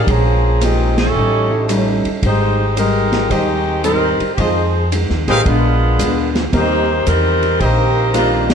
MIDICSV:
0, 0, Header, 1, 8, 480
1, 0, Start_track
1, 0, Key_signature, -3, "major"
1, 0, Tempo, 538117
1, 61, Time_signature, 4, 2, 24, 8
1, 7618, End_track
2, 0, Start_track
2, 0, Title_t, "Trumpet section"
2, 0, Program_c, 0, 61
2, 1025, Note_on_c, 0, 69, 60
2, 1026, Note_on_c, 0, 75, 70
2, 1027, Note_on_c, 0, 67, 67
2, 1028, Note_on_c, 0, 73, 65
2, 1762, Note_off_c, 0, 69, 0
2, 1762, Note_off_c, 0, 75, 0
2, 1763, Note_off_c, 0, 67, 0
2, 1763, Note_off_c, 0, 73, 0
2, 2941, Note_on_c, 0, 63, 76
2, 2941, Note_on_c, 0, 75, 83
2, 2942, Note_on_c, 0, 72, 70
2, 2943, Note_on_c, 0, 67, 77
2, 3680, Note_off_c, 0, 63, 0
2, 3680, Note_off_c, 0, 72, 0
2, 3680, Note_off_c, 0, 75, 0
2, 3681, Note_off_c, 0, 67, 0
2, 3902, Note_on_c, 0, 68, 63
2, 3903, Note_on_c, 0, 65, 67
2, 3903, Note_on_c, 0, 72, 63
2, 3904, Note_on_c, 0, 75, 87
2, 4121, Note_off_c, 0, 65, 0
2, 4121, Note_off_c, 0, 68, 0
2, 4122, Note_off_c, 0, 72, 0
2, 4122, Note_off_c, 0, 75, 0
2, 4712, Note_on_c, 0, 68, 78
2, 4712, Note_on_c, 0, 71, 79
2, 4713, Note_on_c, 0, 70, 82
2, 4714, Note_on_c, 0, 77, 107
2, 4816, Note_off_c, 0, 68, 0
2, 4816, Note_off_c, 0, 71, 0
2, 4817, Note_off_c, 0, 70, 0
2, 4817, Note_off_c, 0, 77, 0
2, 6784, Note_on_c, 0, 67, 85
2, 6785, Note_on_c, 0, 72, 76
2, 6785, Note_on_c, 0, 75, 85
2, 6786, Note_on_c, 0, 70, 76
2, 7519, Note_off_c, 0, 67, 0
2, 7519, Note_off_c, 0, 72, 0
2, 7519, Note_off_c, 0, 75, 0
2, 7520, Note_off_c, 0, 70, 0
2, 7618, End_track
3, 0, Start_track
3, 0, Title_t, "Grand piano"
3, 0, Program_c, 1, 0
3, 539, Note_on_c, 1, 56, 47
3, 542, Note_on_c, 1, 58, 41
3, 548, Note_on_c, 1, 61, 43
3, 549, Note_on_c, 1, 65, 42
3, 554, Note_on_c, 1, 70, 51
3, 830, Note_off_c, 1, 56, 0
3, 831, Note_off_c, 1, 58, 0
3, 835, Note_off_c, 1, 61, 0
3, 835, Note_off_c, 1, 65, 0
3, 837, Note_off_c, 1, 70, 0
3, 1337, Note_on_c, 1, 55, 48
3, 1338, Note_on_c, 1, 61, 47
3, 1341, Note_on_c, 1, 63, 47
3, 1344, Note_on_c, 1, 64, 50
3, 1348, Note_on_c, 1, 69, 62
3, 1948, Note_off_c, 1, 55, 0
3, 1948, Note_off_c, 1, 61, 0
3, 1950, Note_off_c, 1, 63, 0
3, 1951, Note_off_c, 1, 64, 0
3, 1953, Note_off_c, 1, 69, 0
3, 4857, Note_on_c, 1, 56, 60
3, 4861, Note_on_c, 1, 59, 51
3, 4864, Note_on_c, 1, 62, 56
3, 4865, Note_on_c, 1, 65, 56
3, 4869, Note_on_c, 1, 70, 64
3, 5597, Note_off_c, 1, 56, 0
3, 5599, Note_off_c, 1, 59, 0
3, 5600, Note_off_c, 1, 62, 0
3, 5601, Note_off_c, 1, 65, 0
3, 5603, Note_off_c, 1, 70, 0
3, 5820, Note_on_c, 1, 55, 66
3, 5824, Note_on_c, 1, 58, 61
3, 5825, Note_on_c, 1, 60, 51
3, 5829, Note_on_c, 1, 63, 57
3, 5834, Note_on_c, 1, 70, 65
3, 6111, Note_off_c, 1, 55, 0
3, 6112, Note_off_c, 1, 58, 0
3, 6113, Note_off_c, 1, 60, 0
3, 6115, Note_off_c, 1, 63, 0
3, 6118, Note_off_c, 1, 70, 0
3, 7259, Note_on_c, 1, 55, 45
3, 7265, Note_on_c, 1, 58, 42
3, 7268, Note_on_c, 1, 60, 40
3, 7268, Note_on_c, 1, 63, 40
3, 7272, Note_on_c, 1, 70, 46
3, 7618, Note_off_c, 1, 55, 0
3, 7618, Note_off_c, 1, 58, 0
3, 7618, Note_off_c, 1, 60, 0
3, 7618, Note_off_c, 1, 63, 0
3, 7618, Note_off_c, 1, 70, 0
3, 7618, End_track
4, 0, Start_track
4, 0, Title_t, "Saxophone section"
4, 0, Program_c, 2, 65
4, 85, Note_on_c, 2, 68, 77
4, 86, Note_on_c, 2, 58, 77
4, 86, Note_on_c, 2, 61, 73
4, 87, Note_on_c, 2, 53, 77
4, 553, Note_off_c, 2, 68, 0
4, 554, Note_off_c, 2, 53, 0
4, 554, Note_off_c, 2, 58, 0
4, 554, Note_off_c, 2, 61, 0
4, 557, Note_on_c, 2, 60, 68
4, 559, Note_on_c, 2, 67, 83
4, 560, Note_on_c, 2, 51, 63
4, 560, Note_on_c, 2, 56, 66
4, 871, Note_off_c, 2, 60, 0
4, 872, Note_off_c, 2, 67, 0
4, 873, Note_off_c, 2, 51, 0
4, 873, Note_off_c, 2, 56, 0
4, 878, Note_on_c, 2, 69, 91
4, 879, Note_on_c, 2, 61, 77
4, 881, Note_on_c, 2, 55, 71
4, 883, Note_on_c, 2, 64, 70
4, 1474, Note_off_c, 2, 61, 0
4, 1474, Note_off_c, 2, 69, 0
4, 1475, Note_off_c, 2, 55, 0
4, 1476, Note_off_c, 2, 64, 0
4, 2012, Note_on_c, 2, 63, 86
4, 2015, Note_on_c, 2, 56, 73
4, 2015, Note_on_c, 2, 72, 97
4, 2016, Note_on_c, 2, 67, 74
4, 2445, Note_off_c, 2, 63, 0
4, 2447, Note_off_c, 2, 56, 0
4, 2447, Note_off_c, 2, 67, 0
4, 2447, Note_off_c, 2, 72, 0
4, 2479, Note_on_c, 2, 70, 88
4, 2481, Note_on_c, 2, 67, 69
4, 2482, Note_on_c, 2, 63, 82
4, 2484, Note_on_c, 2, 56, 76
4, 2941, Note_off_c, 2, 56, 0
4, 2941, Note_off_c, 2, 67, 0
4, 2950, Note_on_c, 2, 51, 63
4, 2951, Note_off_c, 2, 70, 0
4, 2952, Note_on_c, 2, 56, 63
4, 2952, Note_on_c, 2, 67, 83
4, 2953, Note_off_c, 2, 63, 0
4, 2956, Note_on_c, 2, 60, 65
4, 3418, Note_off_c, 2, 60, 0
4, 3427, Note_off_c, 2, 51, 0
4, 3427, Note_off_c, 2, 67, 0
4, 3428, Note_off_c, 2, 56, 0
4, 3429, Note_on_c, 2, 60, 76
4, 3431, Note_on_c, 2, 55, 66
4, 3432, Note_on_c, 2, 70, 95
4, 3438, Note_on_c, 2, 63, 74
4, 3834, Note_off_c, 2, 60, 0
4, 3836, Note_off_c, 2, 55, 0
4, 3836, Note_off_c, 2, 70, 0
4, 3839, Note_off_c, 2, 63, 0
4, 3877, Note_on_c, 2, 67, 51
4, 3911, Note_off_c, 2, 67, 0
4, 3915, Note_on_c, 2, 63, 62
4, 3916, Note_on_c, 2, 53, 60
4, 3917, Note_on_c, 2, 60, 65
4, 3919, Note_on_c, 2, 68, 75
4, 4389, Note_off_c, 2, 63, 0
4, 4390, Note_off_c, 2, 53, 0
4, 4390, Note_off_c, 2, 60, 0
4, 4391, Note_off_c, 2, 68, 0
4, 4705, Note_on_c, 2, 56, 80
4, 4706, Note_on_c, 2, 51, 87
4, 4708, Note_on_c, 2, 60, 94
4, 4709, Note_on_c, 2, 67, 101
4, 4852, Note_off_c, 2, 56, 0
4, 4853, Note_off_c, 2, 51, 0
4, 4854, Note_off_c, 2, 60, 0
4, 4854, Note_off_c, 2, 67, 0
4, 4861, Note_on_c, 2, 62, 79
4, 4862, Note_on_c, 2, 59, 83
4, 4862, Note_on_c, 2, 65, 88
4, 4864, Note_on_c, 2, 56, 74
4, 5663, Note_off_c, 2, 62, 0
4, 5664, Note_off_c, 2, 59, 0
4, 5664, Note_off_c, 2, 65, 0
4, 5665, Note_off_c, 2, 56, 0
4, 5833, Note_on_c, 2, 58, 84
4, 5834, Note_on_c, 2, 67, 85
4, 5834, Note_on_c, 2, 72, 93
4, 5835, Note_on_c, 2, 63, 83
4, 6274, Note_off_c, 2, 58, 0
4, 6275, Note_off_c, 2, 63, 0
4, 6275, Note_off_c, 2, 67, 0
4, 6275, Note_off_c, 2, 72, 0
4, 6307, Note_on_c, 2, 70, 101
4, 6308, Note_on_c, 2, 63, 79
4, 6311, Note_on_c, 2, 55, 80
4, 6313, Note_on_c, 2, 60, 78
4, 6778, Note_off_c, 2, 60, 0
4, 6784, Note_off_c, 2, 63, 0
4, 6784, Note_off_c, 2, 70, 0
4, 6784, Note_on_c, 2, 67, 91
4, 6786, Note_off_c, 2, 55, 0
4, 6789, Note_on_c, 2, 60, 74
4, 6790, Note_on_c, 2, 51, 74
4, 6792, Note_on_c, 2, 58, 83
4, 7255, Note_off_c, 2, 58, 0
4, 7262, Note_off_c, 2, 67, 0
4, 7263, Note_on_c, 2, 65, 88
4, 7264, Note_off_c, 2, 60, 0
4, 7264, Note_on_c, 2, 62, 73
4, 7265, Note_off_c, 2, 51, 0
4, 7265, Note_on_c, 2, 55, 80
4, 7266, Note_on_c, 2, 58, 72
4, 7561, Note_off_c, 2, 62, 0
4, 7561, Note_off_c, 2, 65, 0
4, 7562, Note_off_c, 2, 55, 0
4, 7562, Note_off_c, 2, 58, 0
4, 7581, Note_on_c, 2, 58, 83
4, 7582, Note_on_c, 2, 55, 79
4, 7586, Note_on_c, 2, 60, 75
4, 7587, Note_on_c, 2, 63, 96
4, 7618, Note_off_c, 2, 55, 0
4, 7618, Note_off_c, 2, 58, 0
4, 7618, Note_off_c, 2, 60, 0
4, 7618, Note_off_c, 2, 63, 0
4, 7618, End_track
5, 0, Start_track
5, 0, Title_t, "Steel-string acoustic guitar"
5, 0, Program_c, 3, 25
5, 56, Note_on_c, 3, 46, 42
5, 60, Note_on_c, 3, 53, 39
5, 70, Note_on_c, 3, 56, 43
5, 74, Note_on_c, 3, 61, 46
5, 397, Note_off_c, 3, 46, 0
5, 398, Note_off_c, 3, 53, 0
5, 404, Note_off_c, 3, 56, 0
5, 406, Note_off_c, 3, 61, 0
5, 540, Note_on_c, 3, 46, 57
5, 547, Note_on_c, 3, 53, 55
5, 551, Note_on_c, 3, 56, 57
5, 555, Note_on_c, 3, 61, 66
5, 879, Note_off_c, 3, 46, 0
5, 882, Note_off_c, 3, 53, 0
5, 884, Note_off_c, 3, 56, 0
5, 886, Note_off_c, 3, 61, 0
5, 1019, Note_on_c, 3, 45, 47
5, 1026, Note_on_c, 3, 55, 49
5, 1034, Note_on_c, 3, 61, 45
5, 1039, Note_on_c, 3, 63, 46
5, 1358, Note_off_c, 3, 45, 0
5, 1362, Note_off_c, 3, 55, 0
5, 1366, Note_off_c, 3, 61, 0
5, 1368, Note_off_c, 3, 63, 0
5, 1501, Note_on_c, 3, 45, 73
5, 1508, Note_on_c, 3, 55, 70
5, 1513, Note_on_c, 3, 61, 73
5, 1515, Note_on_c, 3, 63, 80
5, 1840, Note_off_c, 3, 45, 0
5, 1843, Note_off_c, 3, 55, 0
5, 1845, Note_off_c, 3, 61, 0
5, 1847, Note_off_c, 3, 63, 0
5, 1983, Note_on_c, 3, 44, 40
5, 1991, Note_on_c, 3, 55, 46
5, 1997, Note_on_c, 3, 60, 50
5, 2006, Note_on_c, 3, 63, 53
5, 2321, Note_off_c, 3, 44, 0
5, 2325, Note_off_c, 3, 55, 0
5, 2328, Note_off_c, 3, 60, 0
5, 2332, Note_off_c, 3, 63, 0
5, 2463, Note_on_c, 3, 44, 59
5, 2470, Note_on_c, 3, 55, 58
5, 2474, Note_on_c, 3, 60, 62
5, 2479, Note_on_c, 3, 63, 70
5, 2801, Note_off_c, 3, 44, 0
5, 2804, Note_off_c, 3, 55, 0
5, 2806, Note_off_c, 3, 60, 0
5, 2809, Note_off_c, 3, 63, 0
5, 2936, Note_on_c, 3, 44, 50
5, 2944, Note_on_c, 3, 55, 45
5, 2951, Note_on_c, 3, 60, 53
5, 2960, Note_on_c, 3, 63, 57
5, 3278, Note_off_c, 3, 44, 0
5, 3281, Note_off_c, 3, 55, 0
5, 3285, Note_off_c, 3, 60, 0
5, 3290, Note_off_c, 3, 63, 0
5, 3414, Note_on_c, 3, 44, 56
5, 3422, Note_on_c, 3, 55, 59
5, 3426, Note_on_c, 3, 60, 71
5, 3431, Note_on_c, 3, 63, 71
5, 3757, Note_off_c, 3, 44, 0
5, 3760, Note_off_c, 3, 55, 0
5, 3762, Note_off_c, 3, 60, 0
5, 3765, Note_off_c, 3, 63, 0
5, 3900, Note_on_c, 3, 41, 46
5, 3911, Note_on_c, 3, 51, 49
5, 3915, Note_on_c, 3, 56, 48
5, 3923, Note_on_c, 3, 60, 48
5, 4239, Note_off_c, 3, 41, 0
5, 4245, Note_off_c, 3, 51, 0
5, 4247, Note_off_c, 3, 56, 0
5, 4251, Note_off_c, 3, 60, 0
5, 4386, Note_on_c, 3, 41, 55
5, 4390, Note_on_c, 3, 51, 61
5, 4398, Note_on_c, 3, 56, 55
5, 4403, Note_on_c, 3, 60, 60
5, 4722, Note_off_c, 3, 41, 0
5, 4724, Note_off_c, 3, 51, 0
5, 4728, Note_off_c, 3, 56, 0
5, 4731, Note_off_c, 3, 60, 0
5, 4862, Note_on_c, 3, 46, 41
5, 4870, Note_on_c, 3, 56, 52
5, 4875, Note_on_c, 3, 59, 53
5, 4884, Note_on_c, 3, 62, 49
5, 5200, Note_off_c, 3, 46, 0
5, 5204, Note_off_c, 3, 56, 0
5, 5206, Note_off_c, 3, 59, 0
5, 5211, Note_off_c, 3, 62, 0
5, 5342, Note_on_c, 3, 46, 62
5, 5349, Note_on_c, 3, 56, 62
5, 5354, Note_on_c, 3, 59, 67
5, 5359, Note_on_c, 3, 62, 61
5, 5680, Note_off_c, 3, 46, 0
5, 5683, Note_off_c, 3, 56, 0
5, 5686, Note_off_c, 3, 59, 0
5, 5688, Note_off_c, 3, 62, 0
5, 5819, Note_on_c, 3, 51, 45
5, 5829, Note_on_c, 3, 58, 51
5, 5833, Note_on_c, 3, 60, 52
5, 5838, Note_on_c, 3, 67, 54
5, 6158, Note_off_c, 3, 51, 0
5, 6163, Note_off_c, 3, 58, 0
5, 6165, Note_off_c, 3, 60, 0
5, 6167, Note_off_c, 3, 67, 0
5, 6299, Note_on_c, 3, 51, 59
5, 6306, Note_on_c, 3, 58, 59
5, 6310, Note_on_c, 3, 60, 61
5, 6314, Note_on_c, 3, 67, 56
5, 6638, Note_off_c, 3, 51, 0
5, 6641, Note_off_c, 3, 58, 0
5, 6643, Note_off_c, 3, 60, 0
5, 6645, Note_off_c, 3, 67, 0
5, 6777, Note_on_c, 3, 51, 43
5, 6788, Note_on_c, 3, 58, 51
5, 6795, Note_on_c, 3, 60, 45
5, 6800, Note_on_c, 3, 67, 54
5, 7116, Note_off_c, 3, 51, 0
5, 7122, Note_off_c, 3, 58, 0
5, 7125, Note_off_c, 3, 60, 0
5, 7128, Note_off_c, 3, 67, 0
5, 7256, Note_on_c, 3, 51, 62
5, 7259, Note_on_c, 3, 58, 63
5, 7265, Note_on_c, 3, 60, 68
5, 7268, Note_on_c, 3, 67, 73
5, 7595, Note_off_c, 3, 51, 0
5, 7597, Note_off_c, 3, 58, 0
5, 7600, Note_off_c, 3, 60, 0
5, 7601, Note_off_c, 3, 67, 0
5, 7618, End_track
6, 0, Start_track
6, 0, Title_t, "Upright bass"
6, 0, Program_c, 4, 32
6, 64, Note_on_c, 4, 34, 76
6, 988, Note_off_c, 4, 34, 0
6, 1027, Note_on_c, 4, 33, 69
6, 1791, Note_off_c, 4, 33, 0
6, 1986, Note_on_c, 4, 32, 82
6, 2909, Note_off_c, 4, 32, 0
6, 2948, Note_on_c, 4, 39, 73
6, 3712, Note_off_c, 4, 39, 0
6, 3907, Note_on_c, 4, 41, 83
6, 4510, Note_off_c, 4, 41, 0
6, 4549, Note_on_c, 4, 39, 58
6, 4695, Note_off_c, 4, 39, 0
6, 4707, Note_on_c, 4, 33, 71
6, 4854, Note_off_c, 4, 33, 0
6, 4866, Note_on_c, 4, 34, 82
6, 5311, Note_off_c, 4, 34, 0
6, 5341, Note_on_c, 4, 38, 61
6, 5788, Note_off_c, 4, 38, 0
6, 5824, Note_on_c, 4, 39, 73
6, 6269, Note_off_c, 4, 39, 0
6, 6305, Note_on_c, 4, 40, 76
6, 6749, Note_off_c, 4, 40, 0
6, 6784, Note_on_c, 4, 34, 78
6, 7618, Note_off_c, 4, 34, 0
6, 7618, End_track
7, 0, Start_track
7, 0, Title_t, "Muted upright bass strokes"
7, 1829, Note_on_c, 9, 29, 34
7, 1918, Note_off_c, 9, 29, 0
7, 3750, Note_on_c, 9, 29, 43
7, 3839, Note_off_c, 9, 29, 0
7, 7618, End_track
8, 0, Start_track
8, 0, Title_t, "Drums"
8, 62, Note_on_c, 9, 36, 35
8, 68, Note_on_c, 9, 51, 59
8, 152, Note_off_c, 9, 36, 0
8, 157, Note_off_c, 9, 51, 0
8, 547, Note_on_c, 9, 44, 49
8, 547, Note_on_c, 9, 51, 65
8, 637, Note_off_c, 9, 44, 0
8, 637, Note_off_c, 9, 51, 0
8, 872, Note_on_c, 9, 38, 74
8, 872, Note_on_c, 9, 51, 60
8, 961, Note_off_c, 9, 38, 0
8, 962, Note_off_c, 9, 51, 0
8, 1508, Note_on_c, 9, 44, 56
8, 1508, Note_on_c, 9, 51, 65
8, 1597, Note_off_c, 9, 44, 0
8, 1597, Note_off_c, 9, 51, 0
8, 1829, Note_on_c, 9, 51, 43
8, 1918, Note_off_c, 9, 51, 0
8, 1985, Note_on_c, 9, 36, 31
8, 1986, Note_on_c, 9, 51, 61
8, 2074, Note_off_c, 9, 36, 0
8, 2075, Note_off_c, 9, 51, 0
8, 2470, Note_on_c, 9, 44, 53
8, 2470, Note_on_c, 9, 51, 66
8, 2559, Note_off_c, 9, 44, 0
8, 2559, Note_off_c, 9, 51, 0
8, 2787, Note_on_c, 9, 38, 54
8, 2787, Note_on_c, 9, 51, 41
8, 2876, Note_off_c, 9, 38, 0
8, 2877, Note_off_c, 9, 51, 0
8, 2946, Note_on_c, 9, 36, 29
8, 2949, Note_on_c, 9, 51, 54
8, 3035, Note_off_c, 9, 36, 0
8, 3038, Note_off_c, 9, 51, 0
8, 3424, Note_on_c, 9, 44, 57
8, 3424, Note_on_c, 9, 51, 60
8, 3513, Note_off_c, 9, 44, 0
8, 3513, Note_off_c, 9, 51, 0
8, 3748, Note_on_c, 9, 51, 45
8, 3837, Note_off_c, 9, 51, 0
8, 3905, Note_on_c, 9, 36, 30
8, 3905, Note_on_c, 9, 51, 53
8, 3994, Note_off_c, 9, 36, 0
8, 3994, Note_off_c, 9, 51, 0
8, 4389, Note_on_c, 9, 44, 51
8, 4389, Note_on_c, 9, 51, 67
8, 4478, Note_off_c, 9, 44, 0
8, 4478, Note_off_c, 9, 51, 0
8, 4548, Note_on_c, 9, 38, 29
8, 4637, Note_off_c, 9, 38, 0
8, 4708, Note_on_c, 9, 38, 39
8, 4708, Note_on_c, 9, 51, 46
8, 4797, Note_off_c, 9, 38, 0
8, 4797, Note_off_c, 9, 51, 0
8, 4866, Note_on_c, 9, 36, 30
8, 4869, Note_on_c, 9, 51, 55
8, 4955, Note_off_c, 9, 36, 0
8, 4959, Note_off_c, 9, 51, 0
8, 5345, Note_on_c, 9, 44, 56
8, 5345, Note_on_c, 9, 51, 68
8, 5434, Note_off_c, 9, 44, 0
8, 5434, Note_off_c, 9, 51, 0
8, 5667, Note_on_c, 9, 38, 58
8, 5668, Note_on_c, 9, 51, 40
8, 5756, Note_off_c, 9, 38, 0
8, 5757, Note_off_c, 9, 51, 0
8, 5823, Note_on_c, 9, 36, 34
8, 5824, Note_on_c, 9, 51, 55
8, 5913, Note_off_c, 9, 36, 0
8, 5914, Note_off_c, 9, 51, 0
8, 6302, Note_on_c, 9, 44, 52
8, 6302, Note_on_c, 9, 51, 63
8, 6391, Note_off_c, 9, 44, 0
8, 6391, Note_off_c, 9, 51, 0
8, 6624, Note_on_c, 9, 51, 38
8, 6713, Note_off_c, 9, 51, 0
8, 6782, Note_on_c, 9, 36, 31
8, 6783, Note_on_c, 9, 51, 53
8, 6872, Note_off_c, 9, 36, 0
8, 6872, Note_off_c, 9, 51, 0
8, 7262, Note_on_c, 9, 44, 54
8, 7262, Note_on_c, 9, 51, 64
8, 7351, Note_off_c, 9, 44, 0
8, 7351, Note_off_c, 9, 51, 0
8, 7579, Note_on_c, 9, 38, 80
8, 7580, Note_on_c, 9, 51, 64
8, 7618, Note_off_c, 9, 38, 0
8, 7618, Note_off_c, 9, 51, 0
8, 7618, End_track
0, 0, End_of_file